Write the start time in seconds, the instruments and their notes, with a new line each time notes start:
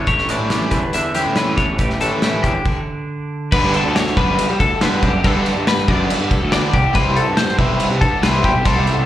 Already playing: clean electric guitar B3 D4
0.07 picked electric bass A1, clean electric guitar A2 G4 C#5, kick, closed hi-hat
0.18 snare
0.29 overdriven electric guitar E3 G3 C#4 E4, clean electric guitar D4 D5, closed hi-hat
0.39 picked electric bass A1
0.50 overdriven electric guitar E3 G3 C#4 E4, clean electric guitar G4, snare, closed hi-hat
0.71 picked electric bass E2, clean electric guitar D3 B4, kick, closed hi-hat
0.93 picked electric bass E2, clean electric guitar D4 E5, closed hi-hat
1.15 clean electric guitar E2 G4, overdriven electric guitar E3 G3 C#4 E4, closed hi-hat
1.26 picked electric bass A2
1.36 overdriven electric guitar E3 G3 C#4 E4, clean electric guitar B3 B4, snare, closed hi-hat
1.57 picked electric bass A1, clean electric guitar D4 C#5, kick, closed hi-hat
1.78 picked electric bass A1, clean electric guitar A2 G4 B4, kick, closed hi-hat
1.90 snare
2.01 overdriven electric guitar E3 G3 C#4 E4, clean electric guitar D4 A4, closed hi-hat
2.11 picked electric bass A1
2.22 overdriven electric guitar E3 G3 C#4 E4, clean electric guitar G4, snare, closed hi-hat
2.43 picked electric bass E2, clean electric guitar D3 G4, kick, closed hi-hat
2.65 kick, crash
3.52 picked electric bass G2, overdriven electric guitar D3 G3 B3 D4, clean electric guitar B4, kick, crash
3.63 picked electric bass G2
3.74 clean electric guitar A4, crash
3.85 picked electric bass D2
3.96 clean electric guitar C#5, snare, crash
4.07 snare
4.17 picked electric bass F#2, overdriven electric guitar D3 G3 B3 D4, clean electric guitar B4, kick, crash
4.38 crash
4.50 picked electric bass G3
4.60 picked electric bass D2, clean electric guitar A4, kick, crash
4.81 picked electric bass G2, overdriven electric guitar D3 G3 B3 D4, clean electric guitar B4, snare, crash
5.02 picked electric bass F#2, clean electric guitar G4, kick, crash
5.24 picked electric bass G2, overdriven electric guitar D3 G3 B3 D4, clean electric guitar A4, kick, crash
5.36 picked electric bass G2
5.46 crash
5.57 picked electric bass G2
5.67 clean electric guitar B4, snare, crash
5.78 snare
5.88 picked electric bass F#2, overdriven electric guitar D3 G3 B3 D4, clean electric guitar D5, kick, crash
6.10 clean electric guitar B4, crash
6.20 picked electric bass G2
6.31 clean electric guitar A4, kick, crash
6.42 picked electric bass D2
6.52 overdriven electric guitar D3 G3 B3 D4, clean electric guitar D5, snare, crash
6.73 picked electric bass C2, clean electric guitar G4, kick, crash
6.94 picked electric bass C2, overdriven electric guitar C3 G3 C4 E4, clean electric guitar B4, kick, crash
7.06 picked electric bass C2
7.16 clean electric guitar A4, crash
7.28 picked electric bass G2
7.37 clean electric guitar C5, snare, crash
7.48 snare
7.57 picked electric bass B1, overdriven electric guitar C3 G3 C4 E4, clean electric guitar B4, kick, crash
7.80 crash
7.91 picked electric bass C3
8.01 picked electric bass G2, clean electric guitar A4, kick, crash
8.22 picked electric bass C2, overdriven electric guitar C3 G3 C4 E4, clean electric guitar B4, snare, crash
8.44 picked electric bass B1, clean electric guitar G4, kick, crash
8.65 picked electric bass C2, overdriven electric guitar C3 G3 C4 E4, clean electric guitar A4, kick, crash
8.76 picked electric bass C2
8.87 crash
8.98 picked electric bass C2